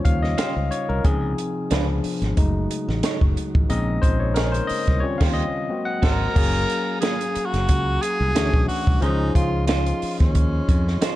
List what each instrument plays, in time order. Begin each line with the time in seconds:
Already playing: tonewheel organ C#3 G3 D#4, tine electric piano G3 C#4 F4 C5 C#5
0.05 fingered electric bass D#2, tine electric piano F5, kick, closed hi-hat
0.23 tine electric piano D#5, snare
0.38 clean electric guitar C#4 G4 C5, tine electric piano F5, snare, closed hi-hat
0.56 fingered electric bass C#2
0.71 tine electric piano C#5, closed hi-hat
0.89 fingered electric bass C2, tine electric piano A#4
1.04 fingered electric bass C#2, tonewheel organ C3 C4 F4, tine electric piano F3 C4 D#4 G#4, kick, closed hi-hat
1.38 closed hi-hat
1.71 fingered electric bass C#2, tine electric piano F3 B3 D4, tonewheel organ B3 D4, clean electric guitar D4 F4 B4, snare, closed hi-hat
2.04 open hi-hat
2.22 fingered electric bass G#1, snare, closed hi-hat
2.37 fingered electric bass F#1, tonewheel organ C#3 F#3 D#4 F#4, tine electric piano G#3 A3 D#4, kick, closed hi-hat
2.71 closed hi-hat
2.88 fingered electric bass A1, snare
3.03 clean electric guitar D#4 A4 C#5, snare, closed hi-hat
3.21 fingered electric bass F#1, kick
3.37 closed hi-hat
3.55 fingered electric bass A1, kick
3.69 fingered electric bass A#1, tine electric piano G#3 C4 C#4 D#4 D#5, tonewheel organ G#3 A#3, closed hi-hat
4.02 fingered electric bass A#1, tine electric piano C5, kick, closed hi-hat
4.20 tine electric piano C#5
4.34 clean electric guitar D#4 G#4 C#5, tine electric piano A#4, snare, closed hi-hat
4.52 tine electric piano C5, closed hi-hat
4.67 tine electric piano D#5, muted fingered electric bass stroke, open hi-hat
4.87 fingered electric bass C2, kick, snare, closed hi-hat
5.00 tonewheel organ C#3 D#3 G3, tine electric piano G3 C4 C#4 F4 C#5
5.18 fingered electric bass D#2, clean electric guitar C#4 G4, tine electric piano F5, kick, snare, crash
5.22 clean electric guitar C5
5.33 tine electric piano D#5
5.69 tonewheel organ F#3 G#3 C4, tine electric piano A#3 C4 F#4
5.85 tine electric piano F#5
6.02 fingered electric bass G#1, clean electric guitar F#4 A#4 C5, tenor saxophone A#4, kick, snare, crash
6.34 fingered electric bass F#1, tine electric piano F#3 A#3 C#4 G#4 F5, tonewheel organ F#4 F5 G#5 A#5, kick, crash
6.70 closed hi-hat
7.01 clean electric guitar A#3 F4 G#4, tenor saxophone G#4, snare, closed hi-hat
7.21 closed hi-hat
7.35 muted fingered electric bass stroke, closed hi-hat
7.46 tenor saxophone F#4
7.54 fingered electric bass F#1, snare, closed hi-hat
7.69 fingered electric bass C#2, kick, closed hi-hat
8.02 tenor saxophone G#4, closed hi-hat
8.20 fingered electric bass C2
8.35 fingered electric bass D2, tine electric piano E3 A3 C#4 D4 F#4, clean electric guitar E4 F#4 C#5, tonewheel organ E5 D6, snare, closed hi-hat
8.54 fingered electric bass B1, kick
8.68 tenor saxophone F#4, open hi-hat
8.87 fingered electric bass C2, kick
9.00 fingered electric bass C#2, tine electric piano D#3 C#4 D#4 G#4 C5, tenor saxophone D#4, tonewheel organ F4 D#5 C6, closed hi-hat
9.07 tine electric piano F3
9.35 fingered electric bass C#2, tenor saxophone F4, kick, closed hi-hat
9.67 clean electric guitar D#4 F4 C5, tenor saxophone F4, snare, closed hi-hat
9.86 closed hi-hat
10.02 muted fingered electric bass stroke, open hi-hat
10.19 fingered electric bass D#2, tenor saxophone C#4, kick, snare, closed hi-hat
10.35 kick, closed hi-hat
10.69 fingered electric bass F2, kick, closed hi-hat
10.88 snare
11.01 clean electric guitar D#4 F4 C5, muted fingered electric bass stroke, snare, closed hi-hat